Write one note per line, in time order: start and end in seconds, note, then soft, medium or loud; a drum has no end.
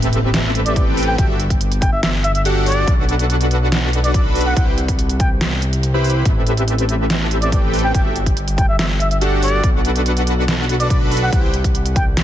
0.00 1.16 A1 medium
0.00 0.74 C4 loud
0.00 0.74 G4 medium
0.00 0.74 A4 medium
0.00 0.74 B4 medium
0.00 0.74 E5 loud
0.00 closed hi-hat medium
0.00 impact medium
0.13 closed hi-hat medium
0.34 snare loud
0.34 closed hi-hat medium
0.55 closed hi-hat medium
0.66 0.73 D5 medium
0.66 closed hi-hat medium
0.76 1.16 C4 medium
0.76 1.16 G4 medium
0.76 1.16 B4 medium
0.76 0.83 D5 medium
0.76 1.16 G5 loud
0.76 kick loud
0.76 closed hi-hat medium
0.97 open hi-hat loud
1.03 closed hi-hat medium
1.08 1.15 G5 medium
1.18 2.85 G1 medium
1.18 1.33 D4 loud
1.18 1.33 F#4 medium
1.18 1.33 G4 medium
1.18 1.33 A4 medium
1.18 1.33 E5 loud
1.18 1.25 G5 medium
1.18 kick loud
1.18 closed hi-hat medium
1.40 closed hi-hat medium
1.50 kick medium
1.50 closed hi-hat medium
1.61 closed hi-hat medium
1.72 closed hi-hat medium
1.82 1.90 G5 medium
1.82 kick loud
1.82 closed hi-hat medium
1.93 1.99 E5 medium
2.03 2.10 E5 medium
2.03 snare loud
2.03 closed hi-hat medium
2.24 2.31 E5 medium
2.24 closed hi-hat medium
2.35 2.42 E5 medium
2.35 closed hi-hat medium
2.45 2.85 D4 medium
2.45 2.85 F#4 medium
2.45 2.85 G4 medium
2.45 2.85 A4 medium
2.45 2.85 F#5 loud
2.45 closed hi-hat medium
2.66 2.92 D5 medium
2.66 open hi-hat medium
2.72 closed hi-hat medium
2.87 4.54 B1 medium
2.87 4.12 D4 loud
2.87 4.12 F#4 medium
2.87 4.12 A4 medium
2.87 4.12 B4 medium
2.87 4.12 F#5 loud
2.87 kick loud
2.87 closed hi-hat medium
3.09 closed hi-hat medium
3.19 closed hi-hat medium
3.30 closed hi-hat medium
3.41 closed hi-hat medium
3.51 closed hi-hat medium
3.72 snare loud
3.72 closed hi-hat medium
3.93 closed hi-hat medium
4.04 4.11 D5 medium
4.04 closed hi-hat medium
4.14 4.54 A4 medium
4.14 4.54 B4 medium
4.14 4.21 D5 medium
4.14 4.54 B5 loud
4.14 kick loud
4.14 closed hi-hat medium
4.35 open hi-hat medium
4.41 closed hi-hat medium
4.46 4.53 F#5 medium
4.57 6.23 C2 medium
4.57 4.71 E4 medium
4.57 4.71 G4 medium
4.57 4.71 B4 medium
4.57 4.71 C5 medium
4.57 4.64 F#5 medium
4.57 4.71 G5 loud
4.57 kick loud
4.57 closed hi-hat medium
4.78 closed hi-hat medium
4.88 kick medium
4.88 closed hi-hat medium
4.99 closed hi-hat medium
5.10 closed hi-hat medium
5.20 5.29 G5 medium
5.20 kick loud
5.20 closed hi-hat medium
5.41 snare loud
5.41 closed hi-hat medium
5.62 closed hi-hat medium
5.73 closed hi-hat medium
5.83 closed hi-hat medium
5.94 6.23 E4 medium
5.94 6.23 G4 medium
5.94 6.23 B4 medium
5.94 6.23 C5 medium
5.94 6.23 B5 loud
6.04 open hi-hat medium
6.10 closed hi-hat medium
6.25 7.92 A1 medium
6.25 7.50 C4 loud
6.25 7.50 B4 medium
6.25 7.50 E5 loud
6.25 kick loud
6.25 closed hi-hat medium
6.47 closed hi-hat medium
6.57 closed hi-hat medium
6.68 closed hi-hat medium
6.78 closed hi-hat medium
6.89 closed hi-hat medium
7.10 snare loud
7.10 closed hi-hat medium
7.31 closed hi-hat medium
7.42 7.49 D5 medium
7.42 closed hi-hat medium
7.52 7.92 C4 medium
7.52 7.92 A4 medium
7.52 7.59 D5 medium
7.52 kick loud
7.52 closed hi-hat medium
7.74 open hi-hat medium
7.79 closed hi-hat medium
7.84 7.91 G5 medium
7.95 9.62 G1 medium
7.95 8.09 D4 loud
7.95 8.09 F#4 medium
7.95 8.09 G4 medium
7.95 8.09 A4 medium
7.95 8.09 E5 loud
7.95 8.01 G5 medium
7.95 kick loud
7.95 closed hi-hat medium
8.16 closed hi-hat medium
8.26 kick medium
8.26 closed hi-hat medium
8.37 closed hi-hat medium
8.48 closed hi-hat medium
8.58 8.67 G5 medium
8.58 kick loud
8.58 closed hi-hat medium
8.69 8.75 E5 medium
8.79 8.86 E5 medium
8.79 snare loud
8.79 closed hi-hat medium
9.00 9.07 E5 medium
9.00 closed hi-hat medium
9.11 9.18 E5 medium
9.11 closed hi-hat medium
9.21 9.61 D4 loud
9.21 9.61 F#4 medium
9.21 9.61 G4 medium
9.21 9.61 A4 medium
9.21 9.61 F#5 loud
9.21 closed hi-hat medium
9.43 9.68 D5 medium
9.43 open hi-hat medium
9.48 closed hi-hat medium
9.63 11.30 B1 medium
9.63 10.88 F#4 medium
9.63 10.88 B4 medium
9.63 kick loud
9.63 closed hi-hat medium
9.85 closed hi-hat medium
9.96 closed hi-hat medium
10.06 closed hi-hat medium
10.17 closed hi-hat medium
10.27 closed hi-hat medium
10.48 snare loud
10.48 closed hi-hat medium
10.69 closed hi-hat medium
10.80 10.87 D5 medium
10.80 closed hi-hat medium
10.90 11.30 D4 medium
10.90 11.30 F#4 medium
10.90 11.30 B4 medium
10.90 10.97 D5 medium
10.90 11.30 B5 loud
10.90 kick loud
10.90 closed hi-hat medium
11.12 open hi-hat loud
11.17 closed hi-hat medium
11.22 11.29 F#5 medium
11.33 12.23 C2 medium
11.33 11.47 E4 medium
11.33 11.47 B4 medium
11.33 11.47 C5 medium
11.33 11.40 F#5 medium
11.33 kick loud
11.33 closed hi-hat medium
11.54 closed hi-hat medium
11.64 kick medium
11.64 closed hi-hat medium
11.75 closed hi-hat medium
11.86 closed hi-hat medium
11.96 12.05 G5 loud
11.96 kick loud
11.96 closed hi-hat medium
12.17 snare loud
12.17 closed hi-hat medium